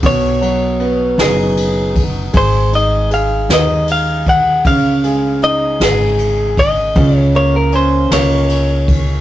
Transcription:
0.03 B1 B2 C#5, kick, ride
0.41 F#3, ride
0.80 B3, ride
1.18 F#1 D#4 G#4, snare, ride
1.57 ride
1.96 kick, ride
2.33 G#1 G#3 C5, kick, ride
2.73 D#4 D#5, ride
3.11 G#3 F5, ride
3.49 D#2 D#4, snare, ride
3.53 D#5
3.88 ride
3.92 F5
4.26 F#5, kick, ride
4.65 C#2 C#3 F5, kick, ride
5.04 G#3, ride
5.42 D#4 D#5, ride
5.80 G#1 G#3 G#4, snare, ride
6.19 ride
6.57 D#5, kick, ride
6.96 C#2 C#3, kick, ride
7.16 C#5
7.34 A#3 C#5, ride
7.56 A#4
7.72 C#4 C5, ride
8.11 C#2 A#3 C#5, snare, ride
8.49 ride
8.88 kick, ride

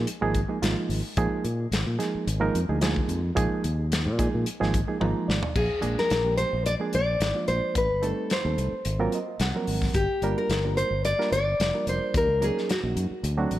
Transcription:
0.07 closed hi-hat
0.21 G#1 F3 G#3 A#3 D#4 G#4
0.34 kick, closed hi-hat
0.49 F3 G#3 A#3 D#4 G#4
0.62 G#1 F3 G#3 A#3 D#4 F4, snare, closed hi-hat
0.89 G#1, open hi-hat
1.17 A#1 F3 G#3 A#3 D#4 G#4, kick, closed hi-hat
1.44 A#2, closed hi-hat
1.59 D#4 F4
1.71 G#1, snare, closed hi-hat
1.86 A#2
1.99 F3 G#3 A#3 D#4 G#4, snare, closed hi-hat
2.15 muted fingered electric bass stroke
2.27 G#1, closed hi-hat
2.40 F3 G#3 A#3 D#4 A#4
2.55 F2, closed hi-hat
2.69 D2 F3 G#3 A#3 D#4 G#4
2.81 F3 G#3 A#3 D#4 G#4, snare, closed hi-hat
2.96 kick
3.09 F2, closed hi-hat
3.35 A#1 F3 G#3 A#3 D#4 G#4, kick, closed hi-hat
3.51 muted fingered electric bass stroke
3.64 D#2, closed hi-hat
3.79 D#4 G#4
3.92 snare, closed hi-hat
4.06 A#2
4.18 F3 G#3 A#3 D#4 G#4, kick, closed hi-hat
4.34 A#2
4.46 closed hi-hat
4.60 G#1 F3 G#3 A#3 D#4 G#4, snare
4.74 kick, closed hi-hat
4.88 F3 G#3 A#3 D#4 G#4
5.00 G#1 F3 G#3 A#3 D#4 F4 A#5, high tom
5.28 G#1 D5, snare
5.43 floor tom
5.55 A#1 G#4, kick, crash
5.81 A#1 F3 G#3 A#3 D4 G#4, closed hi-hat
5.98 A#4, snare
6.10 A#1, snare, closed hi-hat
6.24 F3 G#3 A#3 D4 G4
6.37 C5, closed hi-hat
6.53 A#1
6.66 D4 A#4 D5, closed hi-hat
6.80 F3 G#3 A#3 D4 G#4
6.93 A#1 D5, closed hi-hat
7.08 D4 A#4
7.20 G#1, snare, closed hi-hat
7.35 F3 G#3 A#3 D4 F4
7.48 A#1 C5, closed hi-hat
7.75 A1 B4, kick, closed hi-hat
7.90 G1
8.02 G3 A3 C4 D#4 A4, closed hi-hat
8.30 C5, snare, closed hi-hat
8.44 D#2 G3 A3 C4 D#4 A4
8.58 C2, closed hi-hat
8.72 muted fingered electric bass stroke
8.85 G#1 F4 G#4, closed hi-hat
8.99 F#3 A#3 C4 F4 A#4
9.12 D#5, closed hi-hat
9.28 F4 A#4
9.40 C2 F#5, snare, closed hi-hat
9.55 F3 F#3 A#3 C4 A#4
9.67 G#1, open hi-hat
9.82 kick, snare
9.94 G1 G4, kick, closed hi-hat
10.22 G1 G3 A#3 D4 F4 A#4, closed hi-hat
10.38 A#4
10.49 G1, snare, closed hi-hat
10.64 G3 A#3 D4 F4 A#4
10.77 C5, closed hi-hat
10.91 G1
11.05 F4 A#4 D5, closed hi-hat
11.19 G3 A#3 D4 F4 A#4, snare
11.32 G1 D5, closed hi-hat
11.47 F4 C5
11.60 F1, snare, closed hi-hat
11.73 G3 A#3 D4 F4 A#4
11.87 F1 C5, closed hi-hat
12.14 D#2 A#4, kick, closed hi-hat
12.27 C#2
12.41 F#3 A#3 C#4 D#4 G#4 A#4, closed hi-hat
12.58 snare
12.69 F#4, snare, closed hi-hat
12.83 A#1 F#3 A#3 C#4 D#4 F#4
12.96 F#2, closed hi-hat
13.11 muted fingered electric bass stroke
13.22 D2 D4 G#4, closed hi-hat
13.38 F#3 A3 C4 D4 F#4
13.51 A1, closed hi-hat

